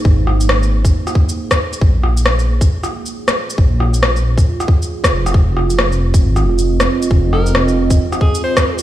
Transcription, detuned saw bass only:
X:1
M:4/4
L:1/8
Q:"Swing 16ths" 1/4=136
K:Bbm
V:1 name="Detuned saw bass" clef=bass
A,,,4 z4 | B,,,4 z4 | B,,,4 z3 F,,, | F,,,4 A,,, F,,,2 z |
F,,,4 z4 |]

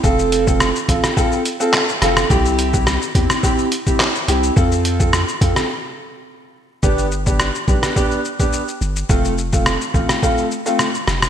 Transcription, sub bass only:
X:1
M:4/4
L:1/16
Q:1/4=106
K:Flyd
V:1 name="Sub bass" clef=bass
F,,,4- F,,, z A,,, z6 z F,,,2 | C,,4- C,, z E,, z6 z C,,2 | F,,4- F,, z F,, z8 z | G,,,4- G,,, z B,,, z6 z G,,,2 |
F,,,4- F,,, z A,,, z6 z F,,,2 |]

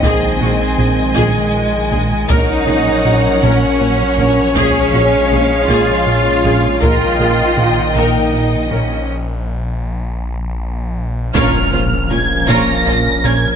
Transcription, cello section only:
X:1
M:6/8
L:1/8
Q:3/8=53
K:Bbm
V:1 name="Cello section"
C3 A,3 | E3 D3 | D3 F3 | F3 E2 D |
z6 | B,, B,, B,, B,, B,, B,, |]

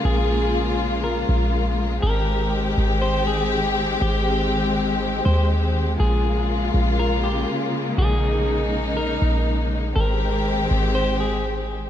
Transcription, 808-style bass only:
X:1
M:4/4
L:1/8
Q:1/4=121
K:Bbdor
V:1 name="808-style bass" clef=bass
B,,,4- B,,, B,,,3 | A,,,3 A,,,4- A,,, | A,,,4- A,,, E,,3 | B,,,3 B,,,3 z2 |
B,,,4- B,,, B,,,3 | A,,,3 A,,,4- A,,, |]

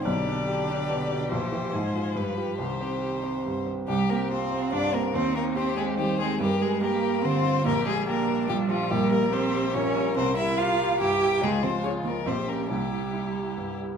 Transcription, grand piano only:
X:1
M:3/4
L:1/8
Q:1/4=143
K:Cm
V:1 name="Grand piano" clef=bass
=B,,, D G D =B,, D | B,,, [=EG] A,, F G,, [FG] | C,, C G C G,, C | C,, C G C G,, C |
E,, C G C E, C | G,, G, G G, D, G, | B,,, G, G G, B,, G, | [K:Cphr] B,,, G, B G, B,, G, |
C,, G, B G, G,, G, | D,, F, A F, B,,, [DG] | C,, G, =E G, G,, G, |]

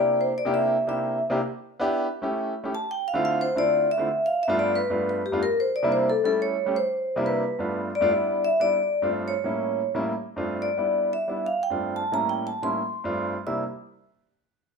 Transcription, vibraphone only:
X:1
M:4/4
L:1/8
Q:1/4=179
K:Gdor
V:1 name="Vibraphone"
d c d e2 e2 z | z8 | a g f f c d2 e- | e f e d =B2 B G |
B c d c A A ^c2 | c3 =B3 z d- | d2 e d3 z _d- | _d3 z4 =d- |
d2 e2 f g2 a | b g a c'4 z | e' z6 z |]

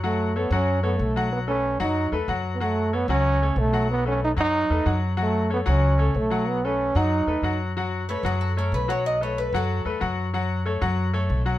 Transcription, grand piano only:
X:1
M:4/4
L:1/8
Q:1/4=186
K:F#dor
V:1 name="Grand piano"
[F,Ff]2 [A,Ac] [F,Ff]2 [A,Ac]2 [F,Ff]- | [F,Ff] [A,AB]2 [F,Ff]2 [A,AB] [F,Ff]2 | [F,Ff]2 [A,Ac] [F,Ff]2 [A,Ac]2 [F,Ff]- | [F,Ff] [A,AB]2 [F,Ff]2 [A,AB] [F,Ff]2 |
[F,Ff]2 [A,Ac] [F,Ff]2 [A,Ac]2 [F,Ff]- | [F,Ff] [A,AB]2 [F,Ff]2 [A,AB] [F,Ff]2 | [F,Ff]2 [A,Ac] [F,Ff]2 [A,Ac]2 [F,Ff]- | [F,Ff] [A,AB]2 [F,Ff]2 [A,AB] [F,Ff]2 |
[F,Ff]2 [A,Ac] [F,Ff]2 [A,Ac]2 [F,Ff] |]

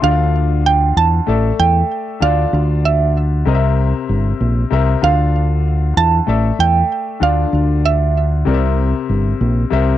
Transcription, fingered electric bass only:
X:1
M:4/4
L:1/8
Q:"Swing 16ths" 1/4=96
K:Dm
V:1 name="Fingered electric bass" clef=bass
D,,3 E,, A,,, E,, z D,, | D,,3 C,,2 G,,, B,,, C,, | D,,3 E,, A,,, E,, z D,, | D,,3 C,,2 G,,, B,,, C,, |]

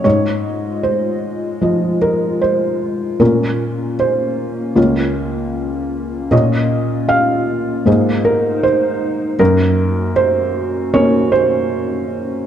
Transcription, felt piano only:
X:1
M:4/4
L:1/8
Q:1/4=77
K:Bbm
V:1 name="Felt piano"
d2 c3 B c2 | B2 c2 z4 | e2 f3 B c2 | B2 c2 d c3 |]
V:2 name="Felt piano"
A,,4 [F,Fe]4 | [B,,B,DF]4 [D,,B,Fd]4 | [B,,B,Fd]4 [A,,B,Ac]4 | G,,4 [B,DB]4 |]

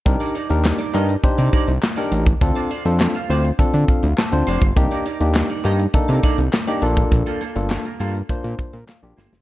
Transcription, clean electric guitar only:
X:1
M:4/4
L:1/16
Q:1/4=102
K:Cdor
V:1 name="Clean electric guitar"
z [EBd] [EBd] z2 [EBd] [EBe] z2 [EBd] [EBd] z2 [EBd] z2 | z [Fcd] [Fcd] z2 [Fcf] [Fcd] z6 z [Fcd] z | z [EBd] [EBd] z2 [EBd] [EBe] z2 [EBd] [EBd] z2 [EBd] z2 | z [B,FA] [B,FA] z2 [B,FB] [B,FA] z6 z [B,FA] z |]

